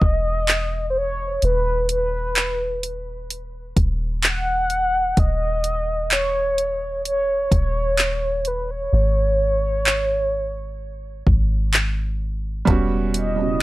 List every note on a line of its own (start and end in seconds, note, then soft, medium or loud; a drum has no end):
0.00 1.38 E1 loud
0.00 0.86 D#5 loud
0.00 kick medium
0.48 clap loud
0.90 0.99 C5 medium
0.97 1.43 C#5 medium
1.42 3.73 D#1 loud
1.42 1.87 B4 loud
1.42 closed hi-hat medium
1.89 3.27 B4 medium
1.89 closed hi-hat medium
2.36 clap loud
2.36 closed hi-hat medium
2.83 closed hi-hat medium
3.30 closed hi-hat medium
3.77 5.13 D#1 loud
3.77 kick medium
3.77 closed hi-hat medium
4.23 5.21 F#5 loud
4.23 clap loud
4.23 closed hi-hat medium
4.70 closed hi-hat medium
5.17 7.48 D#1 loud
5.17 6.12 D#5 loud
5.17 kick medium
5.17 closed hi-hat medium
5.64 closed hi-hat medium
6.11 7.02 C#5 loud
6.11 clap loud
6.11 closed hi-hat medium
6.58 closed hi-hat medium
7.05 8.49 C#5 loud
7.05 closed hi-hat medium
7.52 8.88 D#1 loud
7.52 kick medium
7.52 closed hi-hat medium
7.98 clap loud
7.98 closed hi-hat medium
8.45 8.72 B4 medium
8.45 closed hi-hat medium
8.71 11.51 C#5 loud
8.93 11.23 G#1 loud
9.87 clap loud
11.27 12.63 G#1 loud
11.27 kick medium
11.74 clap loud
12.65 13.62 E1 loud
12.65 13.62 B2 medium
12.65 13.62 C#3 medium
12.65 13.11 G3 loud
12.65 13.62 G3 medium
12.65 13.11 B3 loud
12.65 13.12 C#4 loud
12.65 13.62 E4 medium
12.65 kick loud
12.65 closed hi-hat medium
12.70 13.13 F#4 loud
13.14 13.62 D#5 loud
13.14 closed hi-hat medium
13.36 13.62 G3 medium
13.36 13.62 B3 medium
13.36 13.62 C#4 medium
13.40 13.62 F#4 medium